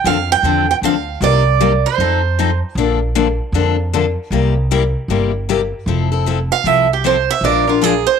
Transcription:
0.04 0.37 F2 medium
0.04 0.16 D3 medium
0.04 0.16 F3 medium
0.04 0.16 C4 medium
0.04 0.17 D4 medium
0.04 0.17 A4 loud
0.04 0.30 F5 medium
0.32 0.67 G5 loud
0.43 0.76 E2 medium
0.43 0.65 D3 medium
0.43 0.65 F3 medium
0.43 0.65 C4 medium
0.43 0.65 D4 medium
0.43 0.65 A4 medium
0.71 0.76 G5 medium
0.82 1.15 D2 medium
0.82 0.94 D3 medium
0.82 0.94 F3 medium
0.82 0.94 C4 medium
0.82 0.94 D4 medium
0.82 0.94 A4 medium
0.82 1.23 F5 medium
1.21 1.83 C2 medium
1.21 1.42 C3 medium
1.21 1.42 G3 medium
1.21 1.42 A#3 medium
1.21 1.43 D#4 medium
1.21 1.43 G4 medium
1.21 1.87 D5 medium
1.61 1.71 C3 medium
1.61 1.71 G3 loud
1.61 1.72 A#3 medium
1.61 1.72 D#4 medium
1.61 1.72 G4 loud
1.86 2.59 C5 medium
1.98 2.60 F2 medium
1.98 2.20 F3 medium
1.98 2.20 C4 medium
1.98 2.20 D#4 medium
1.98 2.21 A4 medium
2.39 2.49 F3 medium
2.39 2.49 C4 medium
2.39 2.50 D#4 medium
2.39 2.50 A4 medium
2.75 3.38 A#1 medium
2.75 2.98 D3 medium
2.75 2.98 F3 medium
2.75 2.98 A#3 medium
2.75 2.98 D4 medium
2.75 2.98 A4 medium
3.15 3.26 D3 medium
3.15 3.26 F3 loud
3.15 3.27 A#3 loud
3.15 3.27 D4 loud
3.15 3.27 A4 medium
3.52 4.15 F2 medium
3.52 3.75 D3 medium
3.52 3.75 F3 medium
3.52 3.75 A#3 medium
3.52 3.76 D4 medium
3.52 3.76 A4 medium
3.93 4.04 D3 medium
3.93 4.04 F3 medium
3.93 4.05 A#3 medium
3.93 4.05 D4 loud
3.93 4.05 A4 medium
4.31 4.93 C2 medium
4.31 4.53 C3 medium
4.31 4.53 G3 medium
4.31 4.53 A#3 medium
4.31 4.53 E4 medium
4.31 4.53 G4 medium
4.71 4.82 C3 medium
4.71 4.82 G3 loud
4.71 4.82 A#3 medium
4.71 4.82 E4 loud
4.71 4.82 G4 loud
5.08 5.71 G1 medium
5.08 5.31 C3 medium
5.08 5.31 G3 medium
5.08 5.31 A#3 medium
5.08 5.31 E4 medium
5.08 5.31 G4 medium
5.49 5.60 C3 medium
5.49 5.60 G3 medium
5.49 5.60 A#3 medium
5.49 5.60 E4 medium
5.49 5.60 G4 loud
5.86 6.49 F1 medium
5.86 6.08 F3 medium
5.86 6.08 C4 medium
5.86 6.09 E4 medium
5.86 6.09 A4 medium
6.12 6.26 C4 soft
6.12 6.26 E4 medium
6.12 6.26 A4 medium
6.26 6.37 F3 medium
6.26 6.38 C4 medium
6.26 6.38 E4 medium
6.26 6.38 A4 medium
6.52 6.67 F5 loud
6.64 7.27 C2 medium
6.64 6.86 F3 medium
6.64 6.87 C4 medium
6.64 6.87 E4 medium
6.64 6.87 A4 medium
6.64 6.89 E5 medium
6.93 7.06 G4 medium
7.04 7.15 F3 medium
7.04 7.15 C4 medium
7.04 7.16 E4 medium
7.04 7.16 A4 medium
7.04 7.29 C5 medium
7.31 7.44 E5 loud
7.41 8.04 A#1 medium
7.41 7.64 F3 medium
7.41 7.64 G#3 medium
7.41 7.64 D4 medium
7.41 7.64 F4 medium
7.41 7.65 A#4 medium
7.41 7.67 D5 medium
7.67 7.81 D4 soft
7.67 7.81 F4 medium
7.67 7.83 F4 soft
7.67 7.81 A#4 medium
7.81 7.93 F3 medium
7.81 7.93 G#3 medium
7.81 7.93 D4 medium
7.81 7.93 F4 medium
7.81 8.06 G#4 medium
7.81 7.93 A#4 medium
8.07 8.20 C5 loud

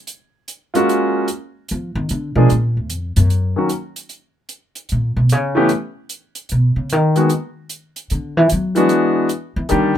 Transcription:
0.07 closed hi-hat soft
0.48 closed hi-hat soft
0.74 1.26 G#3 medium
0.74 1.26 A#3 medium
0.74 1.27 C#4 medium
0.74 1.26 F4 medium
0.74 1.27 F#4 medium
0.74 closed hi-hat soft
0.89 closed hi-hat soft
1.28 closed hi-hat soft
1.68 1.95 F3 medium
1.68 closed hi-hat soft
1.95 2.09 D#3 medium
2.09 2.35 D3 medium
2.09 closed hi-hat soft
2.35 2.49 B2 medium
2.35 2.48 F3 medium
2.35 2.48 G#3 medium
2.35 2.48 A#3 medium
2.35 2.49 D4 medium
2.35 2.49 G#4 medium
2.50 2.76 A#2 medium
2.50 closed hi-hat soft
2.77 2.92 D2 medium
2.90 3.16 F2 medium
2.90 closed hi-hat medium
3.16 3.53 F#2 medium
3.16 closed hi-hat soft
3.30 closed hi-hat soft
3.56 3.68 D#3 soft
3.56 3.68 F#3 soft
3.56 3.69 A#3 soft
3.56 3.69 C#4 soft
3.56 3.69 F#4 medium
3.69 closed hi-hat soft
3.96 closed hi-hat soft
4.09 closed hi-hat soft
4.49 closed hi-hat soft
4.75 closed hi-hat soft
4.89 5.16 A#2 medium
4.89 closed hi-hat soft
5.17 5.32 B2 medium
5.29 5.71 C#3 medium
5.29 closed hi-hat soft
5.55 5.68 E3 medium
5.55 5.68 A3 medium
5.55 5.68 B3 medium
5.55 5.69 C#4 medium
5.55 5.69 G4 medium
5.69 closed hi-hat soft
6.09 closed hi-hat soft
6.35 closed hi-hat soft
6.49 6.76 B2 medium
6.49 closed hi-hat soft
6.76 6.92 C#3 medium
6.90 7.31 D#3 loud
6.90 closed hi-hat soft
7.16 7.28 D#3 medium
7.16 7.28 G#3 soft
7.16 7.29 A#3 soft
7.16 7.29 B3 soft
7.16 7.29 F#4 medium
7.16 closed hi-hat soft
7.29 closed hi-hat soft
7.69 closed hi-hat soft
7.96 closed hi-hat soft
8.10 8.37 D3 medium
8.10 closed hi-hat soft
8.37 8.50 E3 medium
8.49 8.88 F#3 medium
8.49 closed hi-hat medium
8.75 9.26 E3 medium
8.75 9.27 G#3 medium
8.75 9.27 B3 medium
8.75 9.27 D4 medium
8.75 9.28 F#4 medium
8.75 closed hi-hat soft
8.89 closed hi-hat soft
9.29 closed hi-hat soft
9.56 9.69 E3 loud
9.69 9.95 D3 medium
9.69 9.93 D#3 medium
9.69 9.93 G3 medium
9.69 9.94 A#3 medium
9.69 9.94 D4 medium
9.69 9.94 G4 medium
9.69 closed hi-hat soft

